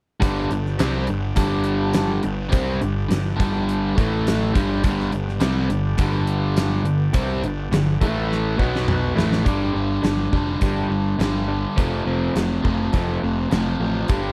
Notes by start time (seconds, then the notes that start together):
0.20 G1 G2 D3 G3 B3 D4 G4, kick, closed hi-hat
0.50 G1 G2 D3, closed hi-hat
0.66 snare
0.79 C2 C3 G3 C4, snare, closed hi-hat
1.07 G1 G2 D3, closed hi-hat
1.36 G1 G2 D3 G3, kick, closed hi-hat
1.64 closed hi-hat
1.93 snare, closed hi-hat
2.23 G1 G2 D3, closed hi-hat
2.52 C2 C3 G3 B3 C4 D4 G4, kick, closed hi-hat
2.81 G1 G2 D3, closed hi-hat
3.10 G1 G2 D3, snare, closed hi-hat
3.39 G1 G2 D3 G3, kick, closed hi-hat
3.69 closed hi-hat
3.98 A1 A2 E3 A3 E4 A4, kick, closed hi-hat
4.27 snare, closed hi-hat
4.53 G1 G2 D3 G3 B3 D4 G4, kick, closed hi-hat
4.84 G1 G2 D3 G3, kick, closed hi-hat
5.00 snare
5.12 G1 G2 D3, closed hi-hat
5.29 snare
5.40 C2 C3 G3 C4, snare, closed hi-hat
5.69 G1 G2 D3, closed hi-hat
5.98 G1 G2 D3 G3, kick, closed hi-hat
6.27 closed hi-hat
6.57 snare, closed hi-hat
6.84 G1 G2 D3 B3 D4 G4, closed hi-hat
7.13 C2 C3 G3 C4, kick, closed hi-hat
7.42 G1 G2 D3, closed hi-hat
7.71 G1 G2 D3, snare, closed hi-hat
8.00 A1 A2 E3 A3 E4 A4, kick, closed hi-hat
8.32 snare
8.57 B1 B2 F#3 B3 F#4 B4, kick
8.76 snare
8.88 mid tom
9.15 A1 A2 E3 A3, snare
9.32 snare
9.44 G1 G2 G3 D4 G4, kick, closed hi-hat
9.48 D3 G3
9.73 G1 G3 D4
10.02 G1 G3 D4, snare, closed hi-hat
10.32 F1 G2 D3 G3 D4, kick
10.61 G1 G3 D4 G4, kick, closed hi-hat
10.90 G1 G3 D4
11.18 G1 G2 D3 G3 D4, snare, closed hi-hat
11.48 G3 D4
11.76 F1 F2 C3 F3 A3 C4, kick, closed hi-hat
12.05 F1 F3 A3 C4
12.35 F1 F3 A3, snare, closed hi-hat
12.64 F1 F2 C3 F3 A3, kick
12.93 F1 F3 A3 C4, kick, closed hi-hat
13.23 F1 F3 A3
13.50 F1 F2 C3 F3 A3, snare, closed hi-hat
13.79 A1 F3 A3
14.08 G1 G2 D3 G3 D4 G4, kick, closed hi-hat